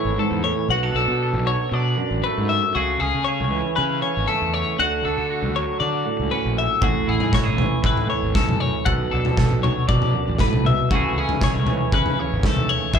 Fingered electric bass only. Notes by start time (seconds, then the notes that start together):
0.05 G#1
0.31 E2
0.69 B1
0.94 B1
1.08 B2
1.33 B1
1.72 B2
2.11 A1
2.38 G#2
2.75 C#2
3.01 C#2
3.14 C#3
3.40 C#2
3.78 C#3
4.17 G#1
4.42 E2
4.79 D2
5.05 D2
5.17 D3
5.42 D2
5.80 D3
6.19 C#2
6.45 A#1
6.82 A1
7.08 A1
7.21 A2
7.46 A1
7.84 A2
8.23 G#1
8.48 F#2
8.87 B1
9.12 B1
9.25 B2
9.51 B1
9.90 B2
10.28 A1
10.53 C2
10.91 C#2
11.16 C#2
11.29 C#3
11.56 C#2
11.93 C#3
12.32 G#1
12.57 D#2
12.94 E2